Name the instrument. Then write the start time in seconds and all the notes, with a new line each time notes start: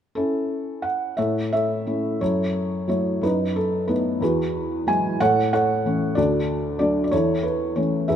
felt piano
0.15 C#4 E4 A4
0.82 F#5
1.17 A2 A4 C#5 E5
1.53 A4 C#5 E5
1.87 A3 C#4 E4
2.21 F#2 E4 A4 C#5
2.88 F#3 A3 E4 C#5
3.21 F#2 D#4 B4
3.56 A4
3.88 A3 B3 D#4 B4
4.21 E2 F#4 G#4 B4
4.87 F#3 G#3 E4 G#5
5.20 A2 A4 C#5 F#5
5.53 A4 C#5 F#5
5.86 E3 A3 C#4
6.15 D2 F#4 A4 D5
6.79 F#3 A3 D4 D5
7.04 D5
7.11 E2 E4 A4 C#5
7.43 B4
7.76 E3 A3 C#4 C#5
8.08 E2 G#4 B4 E5